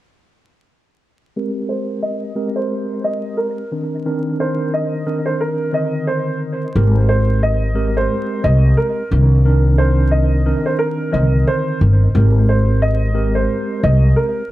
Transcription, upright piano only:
1.69 C5
2.02 D#5
2.56 C5
3.04 D#5
3.37 A#4
4.40 C5
4.74 D#5
5.25 C5
5.40 A#4
5.74 D#5
6.07 C5
7.09 C5
7.43 D#5
7.97 C5
8.44 D#5
8.77 A#4
9.78 C5
10.11 D#5
10.66 C5
10.79 A#4
11.13 D#5
11.47 C5
12.49 C5
12.82 D#5
13.35 C5
13.83 D#5
14.16 A#4

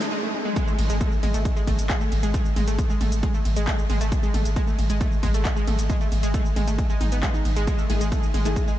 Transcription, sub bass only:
0.79 G#1
0.90 G#1
1.23 G#1
1.34 G#1
1.67 G#1
1.79 G#1
2.12 G#1
2.23 G#1
2.56 G#1
2.68 G#1
3.01 G#1
3.12 G#1
3.45 G#1
3.57 G#1
3.90 G#1
4.01 G#1
4.34 G#1
4.45 G#1
4.79 G#1
4.90 G#1
5.23 G#1
5.34 G#1
5.67 G#1
5.79 G#1
6.12 G#1
6.23 G#1
6.56 G#1
6.68 G#1
7.01 G#1
7.12 G#1
7.45 G#1
7.57 G#1
7.90 G#1
8.01 G#1
8.34 G#1
8.45 G#1

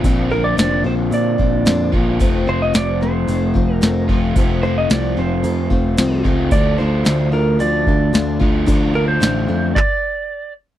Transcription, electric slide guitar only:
0.32 A#4
0.44 D5
0.59 D5
0.86 C5
1.14 D5
2.49 C5
2.62 D#5
2.76 D5
3.02 C5
3.74 A#4
4.63 C5
4.78 D#5
4.92 D5
5.19 C5
6.52 D5
6.78 C5
7.33 A#4
7.60 D5
8.95 A#4
9.08 C5
9.75 D5

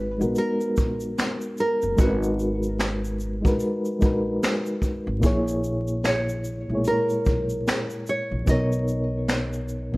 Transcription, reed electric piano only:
Already playing: G#3 D#4 F#4 G#4 B4
0.18 G#3 D#4 F#4
0.23 B3 A#4
1.97 G#3 D#4 F#4
2.01 A#4 B4
3.41 G#3 D#4 F#4
3.46 A#4 B4
3.99 G#3 D#4 F#4
4.04 A#4 B4
5.20 A#2 A#3 E4
5.25 G#4 C#5
6.68 A#2 G#3 E4
6.73 A#3 G#4 C#5
8.45 B2 B3 D#4
8.49 A#4 C#5
9.92 B2 B3

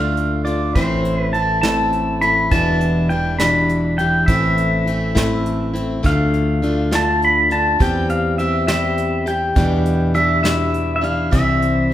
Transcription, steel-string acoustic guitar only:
Already playing: D3 A3 D4 F4
0.45 A3 D4 F4
0.75 A2 E3 A3 C4 E4
1.33 E3 A3 C4 E4
1.63 A2 E3 A3 C4 E4
2.22 A3 C4 E4
2.51 E2 B2 E3 G3 D4 E4
3.10 E3 G3 D4 E4
3.39 E2 B2 E3 G3 D4 E4
3.99 E3 G3 D4 E4
4.28 A2 E3 A3 C4 E4
4.86 E3 A3 C4 E4
5.15 A2 E3 A3 C4 E4
5.74 A3 C4 E4
6.03 D3 A3 D4 F4
6.62 D3 A3 D4 F4
6.91 D3 A3 D4 F4
7.50 A3 D4 F4
7.79 E3 G3 C4 G4
8.38 E3 G3 C4 G4
8.68 E3 G3 C4 G4
9.26 G3 C4 G4
9.55 E2 B2 E3 G3 D4 E4
10.14 E3 G3 D4 E4
10.43 E2 B2 E3 G3 D4 E4
11.01 E3 G3 D4 E4
11.31 C3 E3 G3 C4 E4
11.90 E3

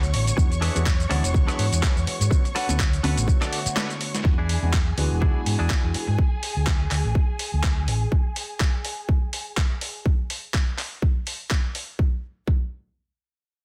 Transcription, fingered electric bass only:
Already playing: D2
0.14 A1
0.38 E2
0.76 E2
1.11 D2
1.24 E1
1.35 D2
1.59 G#2
1.72 E2
1.96 E2
2.07 muted fingered electric bass stroke
2.20 G#2
2.69 D2
3.03 D2
3.17 A1
3.66 muted fingered electric bass stroke
4.25 E2
4.62 E2
4.97 D2
5.11 E1
5.22 D2
5.46 G#2
5.60 E2
5.84 E2
5.95 muted fingered electric bass stroke
6.08 G#2
6.56 D2
6.91 D2
7.05 A1
7.53 D2
7.88 A1

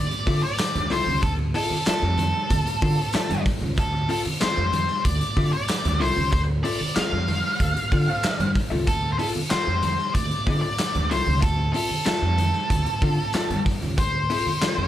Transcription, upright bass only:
0.27 D3
0.75 D2
0.91 C2
1.06 C#2
1.23 D2
1.70 muted upright bass stroke
1.87 muted upright bass stroke
2.02 F2
2.50 D2
2.82 D3
3.14 muted upright bass stroke
3.30 G2
3.61 C#2
3.78 D2
4.26 muted upright bass stroke
4.42 muted upright bass stroke
4.57 F2
5.05 D2
5.37 D3
5.85 D2
6.01 C2
6.17 C#2
6.33 D2
6.81 muted upright bass stroke
6.96 muted upright bass stroke
7.12 F2
7.60 D2
7.92 D3
8.24 muted upright bass stroke
8.39 G2
8.71 C#2
8.87 D2
9.35 muted upright bass stroke
9.51 muted upright bass stroke
9.67 F2
10.15 D2
10.47 D3
10.95 D2
11.11 C2
11.27 C#2
11.43 D2
11.90 muted upright bass stroke
12.07 muted upright bass stroke
12.22 F2
12.70 D2
13.02 D3
13.34 muted upright bass stroke
13.50 G2
13.82 C#2
13.98 D2
14.46 muted upright bass stroke
14.62 muted upright bass stroke
14.77 F2

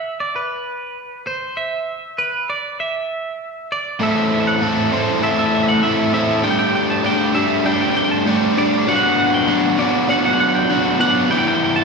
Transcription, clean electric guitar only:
Already playing: E5
0.20 D5
0.36 B4
1.27 C5
1.57 E5
2.18 B4
2.50 D5
2.80 E5
3.72 D5
4.03 E5
4.11 E5
4.17 E5
4.26 E5
4.34 E5
4.41 E5
4.47 F#5
4.63 E5
4.94 C5
5.24 E5
5.31 E5
5.39 E5
5.46 E5
5.55 E5
5.63 E5
5.68 F#5
5.83 E5
6.14 E5
6.44 G5
6.51 G5
6.59 G5
6.67 G5
6.75 G5
6.83 G5
6.90 A5
7.06 G5
7.35 E5
7.66 G5
7.73 G5
7.81 G5
7.90 G5
7.97 G5
8.05 G5
8.11 A5
8.26 G5
8.58 D5
8.89 F#5
8.96 F#5
9.03 F#5
9.12 F#5
9.18 F#5
9.26 F#5
9.34 G5
9.49 F#5
9.79 D5
10.10 F#5
10.17 F#5
10.26 F#5
10.34 F#5
10.40 F#5
10.49 F#5
10.55 G5
10.70 F#5
11.01 F#5
11.31 G5
11.38 G5
11.48 G5
11.55 G5
11.64 G5
11.76 A5

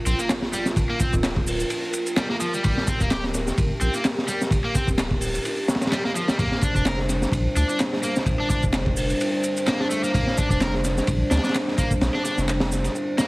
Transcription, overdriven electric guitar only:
0.07 C4
0.19 A#3
0.54 G3
0.90 A#3
1.00 C4
2.18 G3
2.30 A#3
2.41 F3
2.54 G3
2.65 G3
2.88 C4
3.01 A#3
3.11 G4
3.81 C4
3.94 A#3
4.28 G3
4.64 A#3
4.75 C4
5.92 G3
6.05 A#3
6.16 F3
6.29 G3
6.39 A#3
6.63 D4
6.76 D4
6.86 A#4
7.57 D4
7.70 D4
8.03 A#3
8.40 D4
8.50 D4
9.67 A#3
9.80 D4
9.90 A3
10.04 A#3
10.14 A#3
10.38 D4
10.51 D4
10.61 A#4
11.32 D4
11.45 D4
11.78 A#3
12.15 D4
12.25 D4
13.19 A#3

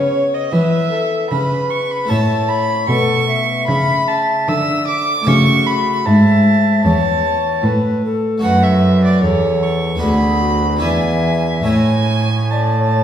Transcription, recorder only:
Already playing: C#5
0.52 B4
0.91 A4
1.31 B4
2.09 C#5
2.88 A4
3.28 E5
5.27 F#4
6.06 E5
6.84 C#5
7.65 B4
8.05 A4
8.43 B4
9.22 A4
10.01 G#4
10.41 F#4
10.82 E5
11.65 C#5
12.52 D5
12.72 D5
12.77 C#5

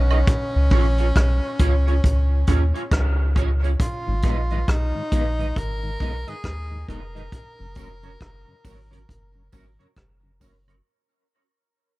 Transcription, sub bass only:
Already playing: B1
0.56 C#2
0.72 A#1
1.17 B1
1.60 C#2
2.05 C#2
2.49 D#2
2.92 C#2
4.08 G#1
4.24 A#1
4.69 B1
5.13 A#1
5.57 G#1
6.01 B1
6.45 D#2
6.89 F1
7.60 F#1
7.77 F1
8.22 F#1
8.66 G#1
9.10 F#1
9.54 G#1
9.97 F#1

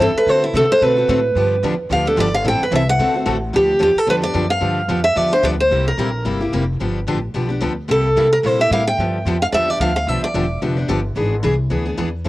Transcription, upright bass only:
0.00 G2
0.14 muted upright bass stroke
0.26 D3
0.54 C3
0.69 muted upright bass stroke
0.81 B2
1.08 A2
1.35 G2
1.63 E2
1.90 D2
2.17 G1
2.44 A1
2.60 muted upright bass stroke
2.71 C2
2.99 D2
3.26 A1
3.53 D2
3.80 E2
3.95 muted upright bass stroke
4.07 F2
4.34 F#2
4.61 G2
4.88 F2
5.16 E2
5.43 D2
5.71 C2
5.98 A#1
6.25 G1
6.52 F1
6.80 G1
7.07 A1
7.34 B1
7.61 D2
7.89 C2
8.16 C3
8.43 A#2
8.71 A2
8.98 G2
9.25 F2
9.52 E2
9.80 D2
10.07 B1
10.22 muted upright bass stroke
10.34 E1
10.62 F1
10.88 G1
11.16 G#1
11.43 C2
11.71 D2
11.98 E2
12.25 A2

